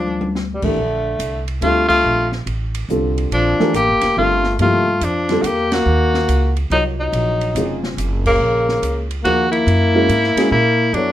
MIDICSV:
0, 0, Header, 1, 7, 480
1, 0, Start_track
1, 0, Tempo, 423729
1, 880, Time_signature, 3, 2, 24, 8
1, 12597, End_track
2, 0, Start_track
2, 0, Title_t, "Tenor saxophone"
2, 0, Program_c, 0, 66
2, 0, Note_on_c, 0, 62, 85
2, 417, Note_off_c, 0, 62, 0
2, 619, Note_on_c, 0, 55, 49
2, 723, Note_on_c, 0, 57, 71
2, 740, Note_off_c, 0, 55, 0
2, 1676, Note_off_c, 0, 57, 0
2, 1838, Note_on_c, 0, 65, 97
2, 2127, Note_off_c, 0, 65, 0
2, 2134, Note_on_c, 0, 65, 91
2, 2588, Note_off_c, 0, 65, 0
2, 3781, Note_on_c, 0, 62, 89
2, 4217, Note_off_c, 0, 62, 0
2, 4258, Note_on_c, 0, 67, 98
2, 4696, Note_off_c, 0, 67, 0
2, 4736, Note_on_c, 0, 65, 94
2, 5175, Note_off_c, 0, 65, 0
2, 5235, Note_on_c, 0, 65, 91
2, 5709, Note_on_c, 0, 62, 78
2, 5726, Note_off_c, 0, 65, 0
2, 6140, Note_on_c, 0, 66, 64
2, 6157, Note_off_c, 0, 62, 0
2, 6183, Note_on_c, 0, 67, 90
2, 6200, Note_off_c, 0, 66, 0
2, 6499, Note_on_c, 0, 66, 97
2, 6516, Note_off_c, 0, 67, 0
2, 7443, Note_off_c, 0, 66, 0
2, 7614, Note_on_c, 0, 63, 79
2, 7750, Note_off_c, 0, 63, 0
2, 7932, Note_on_c, 0, 63, 81
2, 8833, Note_off_c, 0, 63, 0
2, 9364, Note_on_c, 0, 58, 88
2, 10269, Note_off_c, 0, 58, 0
2, 10474, Note_on_c, 0, 66, 103
2, 10763, Note_off_c, 0, 66, 0
2, 10782, Note_on_c, 0, 64, 95
2, 11869, Note_off_c, 0, 64, 0
2, 11917, Note_on_c, 0, 64, 95
2, 12392, Note_on_c, 0, 62, 93
2, 12409, Note_off_c, 0, 64, 0
2, 12597, Note_off_c, 0, 62, 0
2, 12597, End_track
3, 0, Start_track
3, 0, Title_t, "Grand piano"
3, 0, Program_c, 1, 0
3, 716, Note_on_c, 1, 52, 52
3, 716, Note_on_c, 1, 57, 52
3, 723, Note_on_c, 1, 62, 52
3, 727, Note_on_c, 1, 67, 51
3, 730, Note_on_c, 1, 70, 59
3, 866, Note_off_c, 1, 52, 0
3, 866, Note_off_c, 1, 57, 0
3, 870, Note_off_c, 1, 62, 0
3, 872, Note_off_c, 1, 67, 0
3, 873, Note_off_c, 1, 70, 0
3, 1834, Note_on_c, 1, 50, 57
3, 1839, Note_on_c, 1, 55, 49
3, 1839, Note_on_c, 1, 60, 52
3, 1845, Note_on_c, 1, 65, 55
3, 1851, Note_on_c, 1, 69, 60
3, 2565, Note_off_c, 1, 50, 0
3, 2567, Note_off_c, 1, 60, 0
3, 2568, Note_off_c, 1, 55, 0
3, 2570, Note_off_c, 1, 65, 0
3, 2574, Note_off_c, 1, 69, 0
3, 3281, Note_on_c, 1, 50, 59
3, 3290, Note_on_c, 1, 60, 53
3, 3291, Note_on_c, 1, 55, 55
3, 3294, Note_on_c, 1, 69, 69
3, 3295, Note_on_c, 1, 65, 53
3, 4008, Note_off_c, 1, 50, 0
3, 4013, Note_off_c, 1, 60, 0
3, 4014, Note_off_c, 1, 55, 0
3, 4015, Note_off_c, 1, 65, 0
3, 4015, Note_off_c, 1, 69, 0
3, 4072, Note_on_c, 1, 52, 73
3, 4076, Note_on_c, 1, 57, 69
3, 4078, Note_on_c, 1, 62, 66
3, 4083, Note_on_c, 1, 67, 67
3, 4086, Note_on_c, 1, 70, 81
3, 4224, Note_off_c, 1, 52, 0
3, 4226, Note_off_c, 1, 57, 0
3, 4227, Note_off_c, 1, 62, 0
3, 4230, Note_off_c, 1, 67, 0
3, 4231, Note_off_c, 1, 70, 0
3, 4724, Note_on_c, 1, 55, 52
3, 4725, Note_on_c, 1, 50, 52
3, 4730, Note_on_c, 1, 60, 50
3, 4734, Note_on_c, 1, 70, 60
3, 4737, Note_on_c, 1, 65, 51
3, 5001, Note_off_c, 1, 50, 0
3, 5001, Note_off_c, 1, 55, 0
3, 5004, Note_off_c, 1, 60, 0
3, 5006, Note_off_c, 1, 70, 0
3, 5007, Note_off_c, 1, 65, 0
3, 5209, Note_on_c, 1, 48, 64
3, 5214, Note_on_c, 1, 58, 61
3, 5216, Note_on_c, 1, 53, 56
3, 5217, Note_on_c, 1, 64, 59
3, 5225, Note_on_c, 1, 67, 68
3, 5483, Note_off_c, 1, 48, 0
3, 5486, Note_off_c, 1, 58, 0
3, 5487, Note_off_c, 1, 53, 0
3, 5487, Note_off_c, 1, 64, 0
3, 5491, Note_off_c, 1, 67, 0
3, 6005, Note_on_c, 1, 50, 66
3, 6007, Note_on_c, 1, 55, 62
3, 6010, Note_on_c, 1, 60, 61
3, 6016, Note_on_c, 1, 65, 64
3, 6016, Note_on_c, 1, 69, 78
3, 6150, Note_off_c, 1, 50, 0
3, 6151, Note_off_c, 1, 55, 0
3, 6153, Note_off_c, 1, 60, 0
3, 6156, Note_off_c, 1, 65, 0
3, 6156, Note_off_c, 1, 69, 0
3, 7608, Note_on_c, 1, 54, 54
3, 7612, Note_on_c, 1, 48, 49
3, 7613, Note_on_c, 1, 65, 44
3, 7618, Note_on_c, 1, 70, 46
3, 7624, Note_on_c, 1, 73, 54
3, 8330, Note_off_c, 1, 54, 0
3, 8332, Note_off_c, 1, 48, 0
3, 8333, Note_off_c, 1, 65, 0
3, 8335, Note_off_c, 1, 70, 0
3, 8338, Note_off_c, 1, 73, 0
3, 8572, Note_on_c, 1, 49, 58
3, 8577, Note_on_c, 1, 54, 53
3, 8578, Note_on_c, 1, 60, 49
3, 8580, Note_on_c, 1, 65, 51
3, 8586, Note_on_c, 1, 68, 65
3, 9292, Note_off_c, 1, 49, 0
3, 9295, Note_off_c, 1, 54, 0
3, 9295, Note_off_c, 1, 60, 0
3, 9296, Note_off_c, 1, 65, 0
3, 9299, Note_off_c, 1, 68, 0
3, 10477, Note_on_c, 1, 58, 49
3, 10479, Note_on_c, 1, 53, 53
3, 10483, Note_on_c, 1, 63, 48
3, 10485, Note_on_c, 1, 72, 63
3, 10488, Note_on_c, 1, 68, 48
3, 10957, Note_off_c, 1, 53, 0
3, 10957, Note_off_c, 1, 58, 0
3, 10959, Note_off_c, 1, 63, 0
3, 10960, Note_off_c, 1, 72, 0
3, 10962, Note_off_c, 1, 68, 0
3, 11268, Note_on_c, 1, 56, 73
3, 11274, Note_on_c, 1, 61, 67
3, 11275, Note_on_c, 1, 64, 70
3, 11275, Note_on_c, 1, 66, 69
3, 11280, Note_on_c, 1, 70, 82
3, 11420, Note_off_c, 1, 56, 0
3, 11423, Note_off_c, 1, 61, 0
3, 11424, Note_off_c, 1, 64, 0
3, 11424, Note_off_c, 1, 66, 0
3, 11426, Note_off_c, 1, 70, 0
3, 11746, Note_on_c, 1, 56, 73
3, 11755, Note_on_c, 1, 61, 65
3, 11756, Note_on_c, 1, 64, 61
3, 11759, Note_on_c, 1, 68, 79
3, 11762, Note_on_c, 1, 66, 64
3, 11899, Note_off_c, 1, 56, 0
3, 11904, Note_off_c, 1, 61, 0
3, 11904, Note_off_c, 1, 64, 0
3, 11905, Note_off_c, 1, 68, 0
3, 11907, Note_off_c, 1, 66, 0
3, 12400, Note_on_c, 1, 54, 47
3, 12400, Note_on_c, 1, 64, 46
3, 12402, Note_on_c, 1, 59, 46
3, 12407, Note_on_c, 1, 69, 43
3, 12413, Note_on_c, 1, 73, 56
3, 12597, Note_off_c, 1, 54, 0
3, 12597, Note_off_c, 1, 59, 0
3, 12597, Note_off_c, 1, 64, 0
3, 12597, Note_off_c, 1, 69, 0
3, 12597, Note_off_c, 1, 73, 0
3, 12597, End_track
4, 0, Start_track
4, 0, Title_t, "Trombone"
4, 0, Program_c, 2, 57
4, 0, Note_on_c, 2, 53, 81
4, 410, Note_off_c, 2, 53, 0
4, 584, Note_on_c, 2, 47, 45
4, 684, Note_on_c, 2, 50, 65
4, 701, Note_off_c, 2, 47, 0
4, 1657, Note_off_c, 2, 50, 0
4, 1821, Note_on_c, 2, 57, 87
4, 2118, Note_off_c, 2, 57, 0
4, 2138, Note_on_c, 2, 57, 81
4, 2590, Note_off_c, 2, 57, 0
4, 3770, Note_on_c, 2, 53, 79
4, 4212, Note_off_c, 2, 53, 0
4, 4245, Note_on_c, 2, 58, 87
4, 4689, Note_off_c, 2, 58, 0
4, 4738, Note_on_c, 2, 57, 82
4, 5176, Note_off_c, 2, 57, 0
4, 5210, Note_on_c, 2, 57, 80
4, 5706, Note_on_c, 2, 53, 71
4, 5723, Note_off_c, 2, 57, 0
4, 6124, Note_on_c, 2, 57, 55
4, 6141, Note_off_c, 2, 53, 0
4, 6172, Note_on_c, 2, 58, 80
4, 6189, Note_off_c, 2, 57, 0
4, 6471, Note_off_c, 2, 58, 0
4, 6471, Note_on_c, 2, 58, 89
4, 7429, Note_off_c, 2, 58, 0
4, 7601, Note_on_c, 2, 54, 68
4, 7739, Note_off_c, 2, 54, 0
4, 7916, Note_on_c, 2, 54, 68
4, 8826, Note_off_c, 2, 54, 0
4, 9367, Note_on_c, 2, 49, 83
4, 10271, Note_off_c, 2, 49, 0
4, 10447, Note_on_c, 2, 58, 89
4, 10749, Note_off_c, 2, 58, 0
4, 10758, Note_on_c, 2, 58, 86
4, 11857, Note_off_c, 2, 58, 0
4, 11905, Note_on_c, 2, 58, 91
4, 12395, Note_on_c, 2, 54, 78
4, 12412, Note_off_c, 2, 58, 0
4, 12597, Note_off_c, 2, 54, 0
4, 12597, End_track
5, 0, Start_track
5, 0, Title_t, "Upright bass"
5, 0, Program_c, 3, 32
5, 0, Note_on_c, 3, 38, 78
5, 657, Note_off_c, 3, 38, 0
5, 703, Note_on_c, 3, 33, 60
5, 857, Note_off_c, 3, 33, 0
5, 863, Note_on_c, 3, 34, 81
5, 1337, Note_off_c, 3, 34, 0
5, 1350, Note_on_c, 3, 36, 76
5, 1821, Note_off_c, 3, 36, 0
5, 1827, Note_on_c, 3, 38, 82
5, 2299, Note_off_c, 3, 38, 0
5, 2315, Note_on_c, 3, 34, 80
5, 2783, Note_off_c, 3, 34, 0
5, 2790, Note_on_c, 3, 33, 76
5, 3260, Note_off_c, 3, 33, 0
5, 3269, Note_on_c, 3, 36, 86
5, 3740, Note_off_c, 3, 36, 0
5, 3754, Note_on_c, 3, 34, 81
5, 4045, Note_off_c, 3, 34, 0
5, 4233, Note_on_c, 3, 33, 87
5, 4403, Note_on_c, 3, 31, 54
5, 4420, Note_off_c, 3, 33, 0
5, 4561, Note_off_c, 3, 31, 0
5, 4567, Note_on_c, 3, 29, 60
5, 4713, Note_off_c, 3, 29, 0
5, 4722, Note_on_c, 3, 31, 82
5, 5186, Note_off_c, 3, 31, 0
5, 5199, Note_on_c, 3, 43, 86
5, 5665, Note_off_c, 3, 43, 0
5, 5675, Note_on_c, 3, 41, 77
5, 6143, Note_off_c, 3, 41, 0
5, 6147, Note_on_c, 3, 40, 83
5, 6619, Note_off_c, 3, 40, 0
5, 6637, Note_on_c, 3, 39, 80
5, 7103, Note_off_c, 3, 39, 0
5, 7119, Note_on_c, 3, 37, 81
5, 7584, Note_off_c, 3, 37, 0
5, 7592, Note_on_c, 3, 36, 88
5, 8060, Note_off_c, 3, 36, 0
5, 8071, Note_on_c, 3, 34, 89
5, 8540, Note_off_c, 3, 34, 0
5, 8552, Note_on_c, 3, 29, 83
5, 9020, Note_off_c, 3, 29, 0
5, 9030, Note_on_c, 3, 30, 89
5, 9499, Note_off_c, 3, 30, 0
5, 9514, Note_on_c, 3, 34, 84
5, 9980, Note_off_c, 3, 34, 0
5, 9995, Note_on_c, 3, 37, 81
5, 10461, Note_off_c, 3, 37, 0
5, 10477, Note_on_c, 3, 39, 84
5, 10942, Note_off_c, 3, 39, 0
5, 10950, Note_on_c, 3, 42, 94
5, 11419, Note_off_c, 3, 42, 0
5, 11431, Note_on_c, 3, 44, 86
5, 11722, Note_off_c, 3, 44, 0
5, 11909, Note_on_c, 3, 46, 89
5, 12373, Note_off_c, 3, 46, 0
5, 12380, Note_on_c, 3, 42, 77
5, 12597, Note_off_c, 3, 42, 0
5, 12597, End_track
6, 0, Start_track
6, 0, Title_t, "Muted upright bass strokes"
6, 11732, Note_on_c, 9, 29, 38
6, 11845, Note_off_c, 9, 29, 0
6, 12597, End_track
7, 0, Start_track
7, 0, Title_t, "Drums"
7, 82, Note_on_c, 9, 48, 41
7, 195, Note_off_c, 9, 48, 0
7, 238, Note_on_c, 9, 48, 65
7, 351, Note_off_c, 9, 48, 0
7, 402, Note_on_c, 9, 38, 46
7, 515, Note_off_c, 9, 38, 0
7, 706, Note_on_c, 9, 49, 59
7, 709, Note_on_c, 9, 36, 63
7, 819, Note_off_c, 9, 49, 0
7, 822, Note_off_c, 9, 36, 0
7, 1356, Note_on_c, 9, 44, 46
7, 1356, Note_on_c, 9, 51, 63
7, 1469, Note_off_c, 9, 44, 0
7, 1469, Note_off_c, 9, 51, 0
7, 1673, Note_on_c, 9, 51, 48
7, 1786, Note_off_c, 9, 51, 0
7, 1834, Note_on_c, 9, 51, 58
7, 1948, Note_off_c, 9, 51, 0
7, 2149, Note_on_c, 9, 36, 77
7, 2149, Note_on_c, 9, 49, 71
7, 2262, Note_off_c, 9, 36, 0
7, 2263, Note_off_c, 9, 49, 0
7, 2630, Note_on_c, 9, 38, 33
7, 2743, Note_off_c, 9, 38, 0
7, 2797, Note_on_c, 9, 51, 58
7, 2910, Note_off_c, 9, 51, 0
7, 3111, Note_on_c, 9, 51, 66
7, 3224, Note_off_c, 9, 51, 0
7, 3280, Note_on_c, 9, 44, 53
7, 3393, Note_off_c, 9, 44, 0
7, 3598, Note_on_c, 9, 51, 42
7, 3712, Note_off_c, 9, 51, 0
7, 3761, Note_on_c, 9, 51, 56
7, 3874, Note_off_c, 9, 51, 0
7, 4074, Note_on_c, 9, 38, 32
7, 4187, Note_off_c, 9, 38, 0
7, 4240, Note_on_c, 9, 44, 48
7, 4240, Note_on_c, 9, 51, 59
7, 4353, Note_off_c, 9, 44, 0
7, 4353, Note_off_c, 9, 51, 0
7, 4546, Note_on_c, 9, 51, 69
7, 4549, Note_on_c, 9, 38, 39
7, 4660, Note_off_c, 9, 51, 0
7, 4662, Note_off_c, 9, 38, 0
7, 5027, Note_on_c, 9, 38, 33
7, 5140, Note_off_c, 9, 38, 0
7, 5199, Note_on_c, 9, 51, 54
7, 5312, Note_off_c, 9, 51, 0
7, 5678, Note_on_c, 9, 44, 60
7, 5678, Note_on_c, 9, 51, 65
7, 5791, Note_off_c, 9, 44, 0
7, 5791, Note_off_c, 9, 51, 0
7, 5991, Note_on_c, 9, 51, 46
7, 5993, Note_on_c, 9, 38, 38
7, 6104, Note_off_c, 9, 51, 0
7, 6106, Note_off_c, 9, 38, 0
7, 6161, Note_on_c, 9, 44, 46
7, 6161, Note_on_c, 9, 51, 66
7, 6275, Note_off_c, 9, 44, 0
7, 6275, Note_off_c, 9, 51, 0
7, 6476, Note_on_c, 9, 51, 60
7, 6478, Note_on_c, 9, 38, 76
7, 6589, Note_off_c, 9, 51, 0
7, 6591, Note_off_c, 9, 38, 0
7, 6957, Note_on_c, 9, 38, 48
7, 7070, Note_off_c, 9, 38, 0
7, 7121, Note_on_c, 9, 44, 54
7, 7121, Note_on_c, 9, 51, 63
7, 7234, Note_off_c, 9, 44, 0
7, 7234, Note_off_c, 9, 51, 0
7, 7437, Note_on_c, 9, 51, 47
7, 7550, Note_off_c, 9, 51, 0
7, 7604, Note_on_c, 9, 51, 54
7, 7718, Note_off_c, 9, 51, 0
7, 8080, Note_on_c, 9, 51, 58
7, 8193, Note_off_c, 9, 51, 0
7, 8396, Note_on_c, 9, 51, 42
7, 8509, Note_off_c, 9, 51, 0
7, 8560, Note_on_c, 9, 44, 60
7, 8560, Note_on_c, 9, 51, 62
7, 8673, Note_off_c, 9, 44, 0
7, 8673, Note_off_c, 9, 51, 0
7, 8876, Note_on_c, 9, 38, 47
7, 8990, Note_off_c, 9, 38, 0
7, 9042, Note_on_c, 9, 44, 56
7, 9042, Note_on_c, 9, 51, 63
7, 9155, Note_off_c, 9, 44, 0
7, 9155, Note_off_c, 9, 51, 0
7, 9352, Note_on_c, 9, 36, 81
7, 9353, Note_on_c, 9, 49, 77
7, 9465, Note_off_c, 9, 36, 0
7, 9466, Note_off_c, 9, 49, 0
7, 9840, Note_on_c, 9, 38, 41
7, 9954, Note_off_c, 9, 38, 0
7, 10001, Note_on_c, 9, 44, 56
7, 10001, Note_on_c, 9, 51, 61
7, 10114, Note_off_c, 9, 44, 0
7, 10114, Note_off_c, 9, 51, 0
7, 10316, Note_on_c, 9, 51, 45
7, 10429, Note_off_c, 9, 51, 0
7, 10480, Note_on_c, 9, 51, 54
7, 10593, Note_off_c, 9, 51, 0
7, 10792, Note_on_c, 9, 51, 47
7, 10905, Note_off_c, 9, 51, 0
7, 10962, Note_on_c, 9, 51, 56
7, 11075, Note_off_c, 9, 51, 0
7, 11434, Note_on_c, 9, 44, 57
7, 11434, Note_on_c, 9, 51, 63
7, 11547, Note_off_c, 9, 44, 0
7, 11547, Note_off_c, 9, 51, 0
7, 11595, Note_on_c, 9, 38, 26
7, 11709, Note_off_c, 9, 38, 0
7, 11750, Note_on_c, 9, 51, 77
7, 11758, Note_on_c, 9, 38, 45
7, 11864, Note_off_c, 9, 51, 0
7, 11872, Note_off_c, 9, 38, 0
7, 12392, Note_on_c, 9, 51, 51
7, 12505, Note_off_c, 9, 51, 0
7, 12597, End_track
0, 0, End_of_file